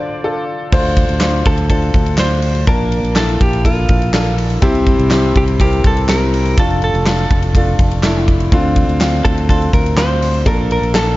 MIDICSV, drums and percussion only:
0, 0, Header, 1, 2, 480
1, 0, Start_track
1, 0, Key_signature, -1, "minor"
1, 0, Tempo, 487013
1, 716, Time_signature, 4, 2, 24, 8
1, 11007, End_track
2, 0, Start_track
2, 0, Title_t, "Drums"
2, 711, Note_on_c, 9, 49, 90
2, 715, Note_on_c, 9, 36, 117
2, 810, Note_off_c, 9, 49, 0
2, 813, Note_off_c, 9, 36, 0
2, 954, Note_on_c, 9, 36, 90
2, 954, Note_on_c, 9, 51, 60
2, 1052, Note_off_c, 9, 36, 0
2, 1053, Note_off_c, 9, 51, 0
2, 1072, Note_on_c, 9, 51, 38
2, 1171, Note_off_c, 9, 51, 0
2, 1187, Note_on_c, 9, 39, 93
2, 1189, Note_on_c, 9, 38, 115
2, 1193, Note_on_c, 9, 51, 69
2, 1285, Note_off_c, 9, 39, 0
2, 1288, Note_off_c, 9, 38, 0
2, 1292, Note_off_c, 9, 51, 0
2, 1432, Note_on_c, 9, 51, 61
2, 1436, Note_on_c, 9, 36, 91
2, 1531, Note_off_c, 9, 51, 0
2, 1535, Note_off_c, 9, 36, 0
2, 1551, Note_on_c, 9, 51, 46
2, 1650, Note_off_c, 9, 51, 0
2, 1672, Note_on_c, 9, 36, 89
2, 1674, Note_on_c, 9, 51, 77
2, 1770, Note_off_c, 9, 36, 0
2, 1773, Note_off_c, 9, 51, 0
2, 1795, Note_on_c, 9, 51, 31
2, 1893, Note_off_c, 9, 51, 0
2, 1910, Note_on_c, 9, 51, 59
2, 1913, Note_on_c, 9, 36, 93
2, 2009, Note_off_c, 9, 51, 0
2, 2012, Note_off_c, 9, 36, 0
2, 2033, Note_on_c, 9, 51, 49
2, 2131, Note_off_c, 9, 51, 0
2, 2143, Note_on_c, 9, 39, 99
2, 2145, Note_on_c, 9, 38, 120
2, 2150, Note_on_c, 9, 51, 83
2, 2242, Note_off_c, 9, 39, 0
2, 2244, Note_off_c, 9, 38, 0
2, 2248, Note_off_c, 9, 51, 0
2, 2387, Note_on_c, 9, 46, 66
2, 2387, Note_on_c, 9, 51, 53
2, 2486, Note_off_c, 9, 46, 0
2, 2486, Note_off_c, 9, 51, 0
2, 2510, Note_on_c, 9, 51, 41
2, 2609, Note_off_c, 9, 51, 0
2, 2632, Note_on_c, 9, 51, 68
2, 2633, Note_on_c, 9, 44, 62
2, 2635, Note_on_c, 9, 36, 109
2, 2731, Note_off_c, 9, 44, 0
2, 2731, Note_off_c, 9, 51, 0
2, 2734, Note_off_c, 9, 36, 0
2, 2876, Note_on_c, 9, 51, 60
2, 2975, Note_off_c, 9, 51, 0
2, 3001, Note_on_c, 9, 51, 41
2, 3099, Note_off_c, 9, 51, 0
2, 3110, Note_on_c, 9, 39, 93
2, 3112, Note_on_c, 9, 38, 109
2, 3117, Note_on_c, 9, 51, 74
2, 3209, Note_off_c, 9, 39, 0
2, 3211, Note_off_c, 9, 38, 0
2, 3215, Note_off_c, 9, 51, 0
2, 3239, Note_on_c, 9, 51, 37
2, 3338, Note_off_c, 9, 51, 0
2, 3359, Note_on_c, 9, 36, 93
2, 3360, Note_on_c, 9, 51, 58
2, 3457, Note_off_c, 9, 36, 0
2, 3459, Note_off_c, 9, 51, 0
2, 3479, Note_on_c, 9, 51, 46
2, 3578, Note_off_c, 9, 51, 0
2, 3596, Note_on_c, 9, 36, 92
2, 3602, Note_on_c, 9, 51, 80
2, 3695, Note_off_c, 9, 36, 0
2, 3700, Note_off_c, 9, 51, 0
2, 3829, Note_on_c, 9, 51, 59
2, 3835, Note_on_c, 9, 36, 97
2, 3928, Note_off_c, 9, 51, 0
2, 3934, Note_off_c, 9, 36, 0
2, 3959, Note_on_c, 9, 51, 48
2, 4058, Note_off_c, 9, 51, 0
2, 4076, Note_on_c, 9, 39, 98
2, 4078, Note_on_c, 9, 38, 118
2, 4083, Note_on_c, 9, 51, 83
2, 4175, Note_off_c, 9, 39, 0
2, 4177, Note_off_c, 9, 38, 0
2, 4181, Note_off_c, 9, 51, 0
2, 4201, Note_on_c, 9, 51, 32
2, 4300, Note_off_c, 9, 51, 0
2, 4319, Note_on_c, 9, 46, 66
2, 4319, Note_on_c, 9, 51, 54
2, 4418, Note_off_c, 9, 46, 0
2, 4418, Note_off_c, 9, 51, 0
2, 4435, Note_on_c, 9, 51, 42
2, 4533, Note_off_c, 9, 51, 0
2, 4552, Note_on_c, 9, 51, 71
2, 4553, Note_on_c, 9, 44, 62
2, 4556, Note_on_c, 9, 36, 113
2, 4651, Note_off_c, 9, 44, 0
2, 4651, Note_off_c, 9, 51, 0
2, 4654, Note_off_c, 9, 36, 0
2, 4680, Note_on_c, 9, 51, 36
2, 4778, Note_off_c, 9, 51, 0
2, 4796, Note_on_c, 9, 36, 94
2, 4796, Note_on_c, 9, 51, 62
2, 4894, Note_off_c, 9, 36, 0
2, 4895, Note_off_c, 9, 51, 0
2, 4922, Note_on_c, 9, 51, 40
2, 5020, Note_off_c, 9, 51, 0
2, 5031, Note_on_c, 9, 39, 90
2, 5033, Note_on_c, 9, 38, 109
2, 5037, Note_on_c, 9, 51, 71
2, 5129, Note_off_c, 9, 39, 0
2, 5132, Note_off_c, 9, 38, 0
2, 5136, Note_off_c, 9, 51, 0
2, 5279, Note_on_c, 9, 36, 87
2, 5279, Note_on_c, 9, 51, 60
2, 5377, Note_off_c, 9, 51, 0
2, 5378, Note_off_c, 9, 36, 0
2, 5397, Note_on_c, 9, 51, 45
2, 5496, Note_off_c, 9, 51, 0
2, 5516, Note_on_c, 9, 36, 94
2, 5524, Note_on_c, 9, 51, 76
2, 5615, Note_off_c, 9, 36, 0
2, 5623, Note_off_c, 9, 51, 0
2, 5644, Note_on_c, 9, 51, 32
2, 5742, Note_off_c, 9, 51, 0
2, 5759, Note_on_c, 9, 36, 98
2, 5759, Note_on_c, 9, 51, 60
2, 5857, Note_off_c, 9, 36, 0
2, 5858, Note_off_c, 9, 51, 0
2, 5881, Note_on_c, 9, 51, 46
2, 5980, Note_off_c, 9, 51, 0
2, 5997, Note_on_c, 9, 39, 90
2, 5999, Note_on_c, 9, 38, 116
2, 6003, Note_on_c, 9, 51, 86
2, 6095, Note_off_c, 9, 39, 0
2, 6098, Note_off_c, 9, 38, 0
2, 6102, Note_off_c, 9, 51, 0
2, 6245, Note_on_c, 9, 46, 70
2, 6245, Note_on_c, 9, 51, 53
2, 6344, Note_off_c, 9, 46, 0
2, 6344, Note_off_c, 9, 51, 0
2, 6362, Note_on_c, 9, 51, 40
2, 6460, Note_off_c, 9, 51, 0
2, 6481, Note_on_c, 9, 44, 63
2, 6481, Note_on_c, 9, 51, 71
2, 6482, Note_on_c, 9, 36, 114
2, 6579, Note_off_c, 9, 51, 0
2, 6580, Note_off_c, 9, 36, 0
2, 6580, Note_off_c, 9, 44, 0
2, 6606, Note_on_c, 9, 51, 34
2, 6705, Note_off_c, 9, 51, 0
2, 6720, Note_on_c, 9, 51, 58
2, 6818, Note_off_c, 9, 51, 0
2, 6846, Note_on_c, 9, 51, 40
2, 6944, Note_off_c, 9, 51, 0
2, 6960, Note_on_c, 9, 39, 90
2, 6962, Note_on_c, 9, 38, 118
2, 6966, Note_on_c, 9, 51, 68
2, 7058, Note_off_c, 9, 39, 0
2, 7061, Note_off_c, 9, 38, 0
2, 7065, Note_off_c, 9, 51, 0
2, 7080, Note_on_c, 9, 51, 36
2, 7179, Note_off_c, 9, 51, 0
2, 7201, Note_on_c, 9, 36, 93
2, 7201, Note_on_c, 9, 51, 59
2, 7299, Note_off_c, 9, 36, 0
2, 7300, Note_off_c, 9, 51, 0
2, 7317, Note_on_c, 9, 51, 45
2, 7416, Note_off_c, 9, 51, 0
2, 7438, Note_on_c, 9, 36, 92
2, 7441, Note_on_c, 9, 51, 83
2, 7537, Note_off_c, 9, 36, 0
2, 7539, Note_off_c, 9, 51, 0
2, 7677, Note_on_c, 9, 51, 58
2, 7679, Note_on_c, 9, 36, 97
2, 7776, Note_off_c, 9, 51, 0
2, 7777, Note_off_c, 9, 36, 0
2, 7799, Note_on_c, 9, 51, 47
2, 7898, Note_off_c, 9, 51, 0
2, 7915, Note_on_c, 9, 39, 94
2, 7917, Note_on_c, 9, 38, 117
2, 7922, Note_on_c, 9, 51, 80
2, 8014, Note_off_c, 9, 39, 0
2, 8016, Note_off_c, 9, 38, 0
2, 8020, Note_off_c, 9, 51, 0
2, 8161, Note_on_c, 9, 36, 87
2, 8162, Note_on_c, 9, 51, 54
2, 8259, Note_off_c, 9, 36, 0
2, 8261, Note_off_c, 9, 51, 0
2, 8281, Note_on_c, 9, 51, 41
2, 8380, Note_off_c, 9, 51, 0
2, 8397, Note_on_c, 9, 51, 71
2, 8399, Note_on_c, 9, 36, 117
2, 8496, Note_off_c, 9, 51, 0
2, 8497, Note_off_c, 9, 36, 0
2, 8633, Note_on_c, 9, 51, 61
2, 8635, Note_on_c, 9, 36, 90
2, 8732, Note_off_c, 9, 51, 0
2, 8734, Note_off_c, 9, 36, 0
2, 8762, Note_on_c, 9, 51, 39
2, 8861, Note_off_c, 9, 51, 0
2, 8876, Note_on_c, 9, 39, 90
2, 8878, Note_on_c, 9, 38, 117
2, 8882, Note_on_c, 9, 51, 70
2, 8974, Note_off_c, 9, 39, 0
2, 8977, Note_off_c, 9, 38, 0
2, 8981, Note_off_c, 9, 51, 0
2, 9118, Note_on_c, 9, 36, 87
2, 9122, Note_on_c, 9, 51, 59
2, 9216, Note_off_c, 9, 36, 0
2, 9221, Note_off_c, 9, 51, 0
2, 9241, Note_on_c, 9, 51, 45
2, 9340, Note_off_c, 9, 51, 0
2, 9355, Note_on_c, 9, 36, 87
2, 9365, Note_on_c, 9, 51, 81
2, 9453, Note_off_c, 9, 36, 0
2, 9464, Note_off_c, 9, 51, 0
2, 9481, Note_on_c, 9, 51, 33
2, 9580, Note_off_c, 9, 51, 0
2, 9594, Note_on_c, 9, 36, 98
2, 9597, Note_on_c, 9, 51, 59
2, 9692, Note_off_c, 9, 36, 0
2, 9695, Note_off_c, 9, 51, 0
2, 9719, Note_on_c, 9, 51, 50
2, 9818, Note_off_c, 9, 51, 0
2, 9828, Note_on_c, 9, 39, 97
2, 9831, Note_on_c, 9, 38, 115
2, 9835, Note_on_c, 9, 51, 81
2, 9927, Note_off_c, 9, 39, 0
2, 9929, Note_off_c, 9, 38, 0
2, 9934, Note_off_c, 9, 51, 0
2, 10072, Note_on_c, 9, 38, 34
2, 10076, Note_on_c, 9, 46, 70
2, 10076, Note_on_c, 9, 51, 56
2, 10170, Note_off_c, 9, 38, 0
2, 10175, Note_off_c, 9, 46, 0
2, 10175, Note_off_c, 9, 51, 0
2, 10191, Note_on_c, 9, 51, 38
2, 10290, Note_off_c, 9, 51, 0
2, 10310, Note_on_c, 9, 36, 114
2, 10311, Note_on_c, 9, 44, 66
2, 10311, Note_on_c, 9, 51, 71
2, 10408, Note_off_c, 9, 36, 0
2, 10409, Note_off_c, 9, 51, 0
2, 10410, Note_off_c, 9, 44, 0
2, 10553, Note_on_c, 9, 51, 61
2, 10652, Note_off_c, 9, 51, 0
2, 10676, Note_on_c, 9, 51, 38
2, 10775, Note_off_c, 9, 51, 0
2, 10789, Note_on_c, 9, 39, 94
2, 10791, Note_on_c, 9, 38, 113
2, 10795, Note_on_c, 9, 51, 74
2, 10887, Note_off_c, 9, 39, 0
2, 10890, Note_off_c, 9, 38, 0
2, 10894, Note_off_c, 9, 51, 0
2, 11007, End_track
0, 0, End_of_file